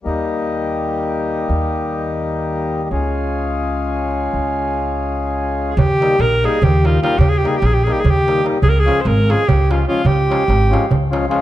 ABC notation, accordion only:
X:1
M:7/8
L:1/8
Q:1/4=147
K:Ebmix
V:1 name="Accordion"
[G,B,EG]6- [G,B,EG]- | [G,B,EG]6- [G,B,EG] | [A,DFA]6- [A,DFA]- | [A,DFA]6- [A,DFA] |
z [G,B,EG] z [G,B,EG] z [G,B,EG] [G,B,EG] | z [G,B,EG] z [G,B,EG] z [G,B,EG] [G,B,EG] | z [F,A,DF] z [F,A,DF] z [F,A,DF] [F,A,DF] | z [F,A,DF] z [F,A,DF] z [F,A,DF] [F,A,DF] |]